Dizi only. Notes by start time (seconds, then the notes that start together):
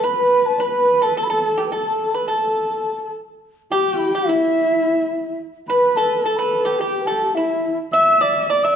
0.04 B5
0.46 A5
0.61 B5
1.03 A5
1.17 A5
1.24 B5
1.30 A5
1.58 G5
1.73 A5
2.15 B5
2.28 A5
3.71 G5
4.28 E5
5.68 B5
5.96 A5
6.23 A5
6.36 B5
6.64 G5
6.78 G5
7.06 A5
7.35 E5
7.92 E6
8.22 D6
8.49 D6
8.64 E6